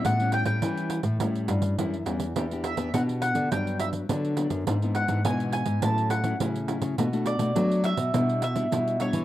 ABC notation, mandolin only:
X:1
M:4/4
L:1/16
Q:1/4=104
K:Edor
V:1 name="Mandolin"
f2 g g8 z4 z | z2 e2 f2 f2 g2 e2 z4 | z2 f2 ^g2 g2 a2 f2 z4 | z2 d4 e4 e4 c2 |]